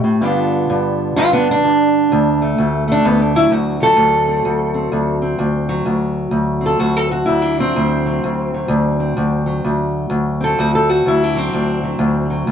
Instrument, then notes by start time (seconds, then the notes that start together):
steel-string acoustic guitar
Already playing: A3 G4
0.04 A2
0.21 G2 D3 B3 D4 F4
0.70 G2
1.16 G2 D4 F4
1.33 B3 D4
1.51 D4
1.65 G2
2.12 D2
2.42 A3
2.58 D2
2.88 A3
2.92 D4
3.05 D2 B3
3.22 D4
3.35 F#3 E4
3.51 D2 F#4
3.80 F#3 A4
3.97 D2
4.27 C4
4.45 D2
4.74 C4
4.92 D2
5.22 C4
5.39 D2
5.69 F#3
5.86 D2
6.31 D2
6.61 C4
6.66 A4
6.79 D2 F#4
6.97 A4
7.11 F#4
7.26 D2 E4
7.42 D4
7.58 F#3 C4
7.76 D2
8.06 F#3
8.24 D2
8.54 F#3
8.68 D2
9.00 C4
9.17 D2
9.46 F#3
9.64 D2
10.10 D2
10.41 C4 A4
10.59 D2 F#4
10.75 A4
10.90 F#4
11.06 D2 E4
11.23 D4
11.35 F#3 C4
11.53 D2
11.83 F#3
11.99 D2
12.30 F#3
12.47 D2